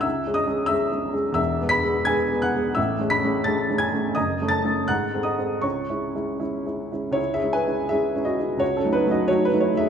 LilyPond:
\new Staff \with { instrumentName = "Upright piano" } { \time 2/4 \key cis \minor \tempo 4 = 86 << { <e'' e'''>8 <dis'' dis'''>8 <e'' e'''>4 | <e'' e'''>8 <b'' b'''>8 <gis'' gis'''>8 <fis'' fis'''>8 | <e'' e'''>8 <b'' b'''>8 <a'' a'''>8 <gis'' gis'''>8 | <dis'' dis'''>8 <a'' a'''>8 <fis'' fis'''>8 <dis'' dis'''>8 |
<cis'' cis'''>4 r4 | <e' cis''>16 <gis' e''>16 <b' gis''>8 <gis' e''>8 <fis' dis''>8 | <fis' cis''>16 <cis' a'>16 <dis' b'>16 <fis' dis''>16 <fis' cis''>16 <dis' b'>16 <e' cis''>16 <gis' e''>16 | } \\ { \tuplet 3/2 { cis,8 <gis cis' gis'>8 <gis cis' gis'>8 <gis cis' gis'>8 <gis cis' gis'>8 <gis cis' gis'>8 } | \tuplet 3/2 { <e,, e,>8 <gis b gis'>8 <gis b gis'>8 <gis b gis'>8 <gis b gis'>8 <gis b gis'>8 } | \tuplet 3/2 { <a,, a,>8 <a cis' gis'>8 <a cis' gis'>8 <a cis' gis'>8 <a cis' gis'>8 <a cis' gis'>8 } | \tuplet 3/2 { <fis,, fis,>8 <a cis' a'>8 <a cis' a'>8 gis,8 <gis bis a'>8 <gis bis a'>8 } |
\tuplet 3/2 { cis,8 <gis cis' e'>8 <gis cis' e'>8 <gis cis' e'>8 <gis cis' e'>8 <gis cis' e'>8 } | \tuplet 3/2 { cis,8 <gis cis' e'>8 <gis cis' e'>8 <gis cis' e'>8 <gis cis' e'>8 <gis cis' e'>8 } | \tuplet 3/2 { cis,8 <fis a dis'>8 <fis a dis'>8 <fis a dis'>8 <fis a dis'>8 <fis a dis'>8 } | } >> }